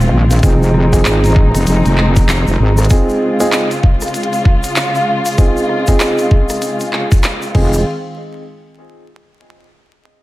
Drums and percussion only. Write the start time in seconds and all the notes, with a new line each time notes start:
0.01 shaker
0.31 closed hi-hat, shaker
0.33 closed hi-hat
0.39 closed hi-hat
0.43 kick, closed hi-hat, shaker
0.63 shaker
0.74 cross-stick
0.93 kick, closed hi-hat, shaker
1.05 clap, closed hi-hat, shaker
1.24 closed hi-hat, shaker
1.26 closed hi-hat
1.32 closed hi-hat
1.34 kick, closed hi-hat
1.55 cross-stick, closed hi-hat, shaker
1.67 closed hi-hat, shaker
1.86 closed hi-hat, shaker
1.98 clap
2.16 kick, closed hi-hat, shaker
2.29 clap, closed hi-hat, shaker
2.47 shaker
2.77 cross-stick, shaker
2.85 closed hi-hat
2.90 kick, closed hi-hat, shaker
3.09 shaker
3.40 closed hi-hat, shaker
3.52 clap, closed hi-hat, shaker
3.71 closed hi-hat, shaker
3.83 kick
4.01 cross-stick, closed hi-hat, shaker
4.08 closed hi-hat
4.14 closed hi-hat, shaker
4.23 closed hi-hat
4.33 closed hi-hat, shaker
4.45 kick
4.64 closed hi-hat, shaker
4.76 clap, closed hi-hat, shaker
4.95 shaker
5.26 closed hi-hat, shaker
5.38 kick, closed hi-hat, shaker
5.57 shaker
5.69 cross-stick
5.87 kick, closed hi-hat, shaker
6.00 clap, closed hi-hat, shaker
6.18 closed hi-hat, shaker
6.31 kick
6.49 cross-stick, closed hi-hat, shaker
6.62 closed hi-hat, shaker
6.80 closed hi-hat, shaker
6.93 clap
7.12 kick, closed hi-hat, shaker
7.23 clap, closed hi-hat, shaker
7.42 shaker
7.55 kick, crash
7.73 shaker